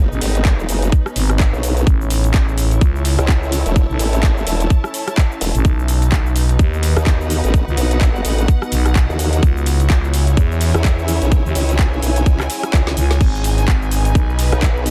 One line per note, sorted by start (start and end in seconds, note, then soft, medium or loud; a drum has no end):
0.00 1.83 B3 medium
0.00 1.83 D#4 medium
0.00 1.87 D#4 medium
0.00 1.83 G#4 medium
0.00 3.01 B4 medium
0.00 1.85 C#5 medium
0.00 downlifter medium
0.11 0.20 A1 medium
0.11 shaker soft
0.21 0.67 G#1 medium
0.21 open hi-hat loud
0.21 shaker medium
0.35 closed hi-hat medium
0.35 shaker soft
0.45 kick loud
0.45 clap loud
0.45 closed hi-hat medium
0.45 shaker soft
0.60 shaker soft
0.69 0.91 F#1 medium
0.69 open hi-hat loud
0.69 shaker medium
0.82 closed hi-hat medium
0.82 shaker soft
0.92 kick loud
0.92 closed hi-hat medium
0.92 shaker soft
1.06 cross-stick medium
1.06 shaker soft
1.16 1.51 G#1 loud
1.16 open hi-hat loud
1.16 shaker medium
1.30 cross-stick medium
1.30 closed hi-hat medium
1.30 shaker soft
1.40 kick loud
1.40 clap loud
1.40 closed hi-hat medium
1.40 shaker soft
1.53 1.85 B1 loud
1.53 shaker soft
1.63 open hi-hat loud
1.63 shaker medium
1.77 closed hi-hat medium
1.77 shaker soft
1.87 2.32 A1 loud
1.87 5.61 C#4 medium
1.87 5.65 E4 medium
1.87 5.61 E4 medium
1.87 5.61 A4 medium
1.87 5.61 E5 medium
1.87 kick loud
1.87 closed hi-hat medium
1.87 shaker soft
2.01 shaker soft
2.09 6.39 C#5 medium
2.09 open hi-hat loud
2.09 shaker medium
2.24 closed hi-hat medium
2.24 shaker soft
2.34 2.80 A1 loud
2.34 kick loud
2.34 clap loud
2.34 closed hi-hat medium
2.34 shaker soft
2.48 shaker soft
2.58 open hi-hat loud
2.58 shaker medium
2.71 closed hi-hat medium
2.71 shaker soft
2.78 3.16 C#2 loud
2.78 7.17 A5 medium
2.78 kick loud
2.78 closed hi-hat medium
2.82 shaker soft
2.96 shaker soft
3.05 open hi-hat loud
3.05 shaker medium
3.19 3.64 C#2 loud
3.19 cross-stick medium
3.19 closed hi-hat medium
3.19 shaker soft
3.29 kick loud
3.29 clap loud
3.29 closed hi-hat medium
3.29 shaker soft
3.43 shaker soft
3.52 open hi-hat loud
3.52 shaker medium
3.66 3.87 E1 loud
3.66 closed hi-hat medium
3.66 shaker soft
3.76 kick loud
3.76 closed hi-hat medium
3.76 shaker soft
3.90 3.98 B1 medium
3.90 shaker soft
3.99 4.45 A1 loud
3.99 open hi-hat loud
3.99 shaker medium
4.13 closed hi-hat medium
4.13 shaker soft
4.23 kick loud
4.23 clap loud
4.23 closed hi-hat medium
4.23 shaker soft
4.37 shaker soft
4.47 4.69 E1 medium
4.47 open hi-hat loud
4.47 shaker medium
4.60 closed hi-hat medium
4.60 shaker soft
4.70 kick loud
4.70 closed hi-hat soft
4.70 shaker soft
4.84 cross-stick medium
4.84 shaker soft
4.94 open hi-hat loud
4.94 shaker medium
5.08 cross-stick medium
5.08 closed hi-hat medium
5.08 shaker soft
5.17 kick loud
5.17 clap loud
5.17 closed hi-hat soft
5.17 shaker soft
5.32 shaker soft
5.41 5.53 E1 loud
5.41 open hi-hat loud
5.41 shaker medium
5.55 5.63 A1 medium
5.55 closed hi-hat medium
5.55 shaker soft
5.65 6.10 B1 loud
5.65 9.39 B3 medium
5.65 9.43 D#4 medium
5.65 9.39 D#4 medium
5.65 9.39 F#4 medium
5.65 9.39 D#5 medium
5.65 kick loud
5.65 closed hi-hat medium
5.65 shaker soft
5.79 shaker soft
5.88 open hi-hat loud
5.88 shaker medium
6.01 10.05 B4 medium
6.01 closed hi-hat medium
6.01 shaker soft
6.12 6.58 B1 loud
6.12 kick loud
6.12 clap loud
6.12 closed hi-hat medium
6.12 shaker soft
6.26 shaker soft
6.36 open hi-hat loud
6.36 shaker medium
6.49 closed hi-hat medium
6.49 shaker soft
6.59 6.94 D#2 loud
6.59 10.95 F#5 medium
6.59 kick loud
6.59 closed hi-hat medium
6.59 shaker soft
6.74 shaker soft
6.83 open hi-hat loud
6.83 shaker medium
6.97 7.42 D#2 loud
6.97 cross-stick medium
6.97 closed hi-hat medium
6.97 shaker soft
7.07 kick loud
7.07 clap loud
7.07 closed hi-hat soft
7.07 shaker soft
7.21 shaker soft
7.30 open hi-hat loud
7.30 shaker medium
7.44 7.65 A1 loud
7.44 closed hi-hat medium
7.44 shaker soft
7.54 kick loud
7.54 closed hi-hat soft
7.54 shaker soft
7.68 7.76 C#2 medium
7.68 shaker soft
7.77 8.23 B1 loud
7.77 open hi-hat loud
7.77 shaker medium
7.91 closed hi-hat medium
7.91 shaker soft
8.01 kick loud
8.01 clap loud
8.01 closed hi-hat medium
8.01 shaker soft
8.16 shaker soft
8.25 8.47 A1 medium
8.25 open hi-hat loud
8.25 shaker medium
8.38 closed hi-hat medium
8.38 shaker soft
8.48 kick loud
8.48 closed hi-hat medium
8.48 shaker soft
8.62 cross-stick medium
8.62 shaker soft
8.72 9.07 B1 loud
8.72 open hi-hat loud
8.72 shaker medium
8.86 cross-stick medium
8.86 closed hi-hat medium
8.86 shaker soft
8.96 kick loud
8.96 clap loud
8.96 closed hi-hat medium
8.96 shaker soft
9.09 9.41 D#2 loud
9.09 shaker soft
9.19 open hi-hat loud
9.19 shaker medium
9.33 closed hi-hat medium
9.33 shaker soft
9.43 9.88 C#2 loud
9.43 13.17 C#4 medium
9.43 13.17 E4 medium
9.43 13.21 E4 loud
9.43 14.90 G#4 medium
9.43 11.30 E5 medium
9.43 kick loud
9.43 closed hi-hat medium
9.43 shaker soft
9.53 14.74 C#5 medium
9.57 shaker soft
9.66 open hi-hat loud
9.66 shaker medium
9.80 closed hi-hat medium
9.80 shaker soft
9.90 10.36 C#2 loud
9.90 kick loud
9.90 clap loud
9.90 closed hi-hat medium
9.90 shaker soft
9.97 14.90 G#5 loud
10.04 shaker soft
10.14 open hi-hat loud
10.14 shaker medium
10.27 closed hi-hat medium
10.27 shaker soft
10.37 10.72 E2 loud
10.37 kick loud
10.37 closed hi-hat medium
10.37 shaker soft
10.52 shaker soft
10.61 open hi-hat loud
10.61 shaker medium
10.74 11.20 E2 loud
10.74 cross-stick medium
10.74 closed hi-hat medium
10.74 shaker soft
10.84 kick loud
10.84 clap loud
10.84 closed hi-hat medium
10.84 shaker soft
10.99 shaker soft
11.08 open hi-hat loud
11.08 shaker medium
11.22 11.43 B1 loud
11.22 closed hi-hat medium
11.22 shaker soft
11.32 13.19 F#5 medium
11.32 kick loud
11.32 closed hi-hat medium
11.32 shaker soft
11.45 11.54 D#2 loud
11.45 shaker soft
11.55 12.01 C#2 medium
11.55 open hi-hat loud
11.55 shaker medium
11.69 closed hi-hat medium
11.69 shaker soft
11.79 kick loud
11.79 clap loud
11.79 closed hi-hat medium
11.79 shaker soft
11.93 shaker soft
12.02 12.25 B1 medium
12.02 open hi-hat loud
12.02 shaker medium
12.16 closed hi-hat medium
12.16 shaker soft
12.26 12.48 C#2 loud
12.26 kick loud
12.26 closed hi-hat medium
12.26 shaker soft
12.40 cross-stick medium
12.40 clap soft
12.40 shaker soft
12.50 open hi-hat loud
12.50 shaker medium
12.63 cross-stick medium
12.63 closed hi-hat medium
12.63 shaker soft
12.73 12.95 C#2 loud
12.73 kick loud
12.73 snare medium
12.73 clap loud
12.73 closed hi-hat medium
12.73 shaker soft
12.87 snare medium
12.87 shaker soft
12.97 13.19 C#2 medium
12.97 open hi-hat loud
12.97 shaker medium
13.11 snare medium
13.11 closed hi-hat medium
13.11 shaker soft
13.21 13.66 G#1 loud
13.21 14.90 B3 medium
13.21 14.90 D#4 medium
13.21 14.90 D#5 medium
13.21 kick loud
13.21 closed hi-hat medium
13.21 crash medium
13.21 shaker soft
13.35 shaker soft
13.44 open hi-hat loud
13.44 shaker medium
13.50 14.90 B4 medium
13.58 closed hi-hat medium
13.58 shaker soft
13.68 14.14 G#1 loud
13.68 kick loud
13.68 clap loud
13.68 closed hi-hat medium
13.68 shaker soft
13.82 shaker soft
13.91 open hi-hat loud
13.91 shaker medium
14.05 closed hi-hat medium
14.05 shaker soft
14.15 14.50 B1 loud
14.15 kick loud
14.15 closed hi-hat medium
14.15 shaker soft
14.30 shaker soft
14.39 open hi-hat loud
14.39 shaker medium
14.52 14.90 B1 loud
14.52 cross-stick medium
14.52 closed hi-hat medium
14.52 shaker soft
14.62 kick loud
14.62 clap loud
14.62 closed hi-hat medium
14.62 shaker soft
14.77 shaker soft
14.86 open hi-hat loud
14.86 shaker medium